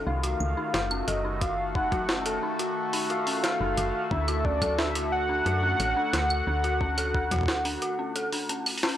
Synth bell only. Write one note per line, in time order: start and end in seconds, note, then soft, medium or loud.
0.07 0.13 D#4 medium
0.23 0.33 F#4 medium
0.57 0.63 D#4 medium
0.74 0.84 F#4 medium
0.91 1.06 C#4 medium
1.08 1.14 A4 medium
1.25 1.31 D#4 medium
1.41 1.51 F#4 medium
1.75 1.81 D#4 medium
1.92 2.02 F#4 medium
2.09 2.24 C#4 medium
2.26 2.32 A4 medium
2.43 2.49 D#4 medium
2.59 2.69 F#4 medium
2.93 2.99 D#4 medium
3.10 3.20 F#4 medium
3.27 3.42 C#4 medium
3.44 3.50 A4 medium
3.60 3.66 D#4 medium
3.77 3.87 F#4 medium
4.11 4.17 D4 medium
4.28 4.38 F#4 medium
4.45 4.60 C#4 medium
4.62 4.68 A4 medium
4.79 4.84 D4 medium
4.95 5.05 F#4 medium
5.29 5.35 D4 medium
5.46 5.56 F#4 medium
5.63 5.78 C#4 medium
5.80 5.86 A4 medium
5.97 6.02 D4 medium
6.13 6.23 F#4 medium
6.47 6.53 D4 medium
6.64 6.74 F#4 medium
6.81 6.96 C#4 medium
6.98 7.04 A4 medium
7.15 7.21 D4 medium
7.31 7.41 F#4 medium
7.65 7.71 D4 medium
7.82 7.92 F#4 medium
7.99 8.14 C#4 medium
8.16 8.22 A4 medium
8.33 8.39 D4 medium
8.50 8.64 C#4 medium
8.83 8.93 C#4 loud